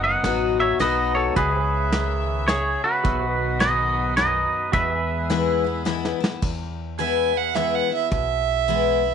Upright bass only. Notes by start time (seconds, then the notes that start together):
Already playing: F#1
0.23 A1
0.80 B1
1.36 C#2
3.05 B1
4.73 E2
6.43 E2
8.11 B1